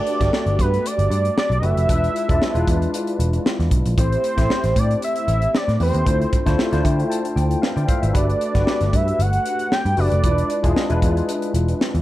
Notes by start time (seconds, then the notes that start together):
Already playing: A3 D4 F#4 G4 B4 D5
0.07 closed hi-hat
0.20 G1 A3 D4 F#4 G4 A4, kick, snare, closed hi-hat
0.33 snare
0.46 G1, closed hi-hat
0.59 G2 B4, kick, closed hi-hat
0.74 closed hi-hat
0.86 D5, closed hi-hat
0.99 G1, closed hi-hat
1.10 G2, closed hi-hat
1.25 closed hi-hat
1.38 D5, snare
1.50 B1, closed hi-hat
1.58 A3 D4 D#5
1.62 F#1 F#4 G4 B4 E5, closed hi-hat
1.77 F1, closed hi-hat
1.88 E1 G#3 D4 E4 F4 B4, kick, closed hi-hat
2.04 closed hi-hat
2.16 closed hi-hat
2.28 E1 G#3 D4 E4 F4 D5, kick, closed hi-hat
2.42 snare
2.54 E1 G#3 D4 E4 F4 B4, closed hi-hat
2.67 E2, kick, closed hi-hat
2.82 closed hi-hat
2.94 closed hi-hat
3.07 closed hi-hat
3.19 E1, closed hi-hat
3.33 closed hi-hat
3.46 snare
3.60 E2, snare, closed hi-hat
3.71 B1, kick, closed hi-hat
3.86 A#1, closed hi-hat
3.97 A1 A3 C4 E4 G4 C5, kick, closed hi-hat
4.12 closed hi-hat
4.24 closed hi-hat
4.37 A1 A3 C4 E4 G4 C5, kick, snare, closed hi-hat
4.50 snare
4.64 A1, snare, closed hi-hat
4.76 A2 D5, kick, closed hi-hat
4.91 closed hi-hat
5.02 E5, closed hi-hat
5.16 closed hi-hat
5.28 A1, closed hi-hat
5.42 closed hi-hat
5.55 D5, snare
5.68 A2, snare, closed hi-hat
5.80 E2 A3 C4 E4 G4 B4 C5, open hi-hat
5.94 D#2, closed hi-hat
6.06 D2 A3 D4 E4 F4 C5, kick, closed hi-hat
6.21 closed hi-hat
6.33 kick, closed hi-hat
6.46 D2 A3 D4 E4 F4 C5, kick, snare, closed hi-hat
6.59 snare
6.72 D2 A3 D4 E4 F4 C5, snare, closed hi-hat
6.84 D3 G5, kick, closed hi-hat
7.00 closed hi-hat
7.10 A5, closed hi-hat
7.25 closed hi-hat
7.36 D2 G5, closed hi-hat
7.51 closed hi-hat
7.62 B4 E5 F5, snare
7.76 D3 D5 G5, closed hi-hat
7.88 C5 E5 F5, kick, closed hi-hat
8.02 G#1 B4 E5, closed hi-hat
8.13 G1 A3 D4 F#4 G4 B4 D5, kick, closed hi-hat
8.30 closed hi-hat
8.41 closed hi-hat
8.54 G1 A3 D4 F#4 G4 B4, kick, snare, closed hi-hat
8.67 snare
8.81 G1, snare, closed hi-hat
8.93 G2 E5, kick, closed hi-hat
9.08 closed hi-hat
9.19 G1 F#5, closed hi-hat
9.33 closed hi-hat
9.46 closed hi-hat
9.59 closed hi-hat
9.72 G5, snare
9.85 G2, closed hi-hat
9.97 F#1 A3 D4 F#4 G4 B4 D5, open hi-hat
10.12 F1, closed hi-hat
10.23 E1 G#3 D4 E4 F4 B4, kick, closed hi-hat
10.38 closed hi-hat
10.50 closed hi-hat
10.63 E1 G#3 D4 E4 F4 G#4, kick, closed hi-hat
10.76 snare
10.89 E1 G#3 D4 E4 F4 B4, closed hi-hat
11.02 E2, kick, closed hi-hat
11.17 closed hi-hat
11.29 closed hi-hat
11.42 closed hi-hat
11.54 E1, closed hi-hat
11.68 closed hi-hat
11.81 snare
11.95 E2, closed hi-hat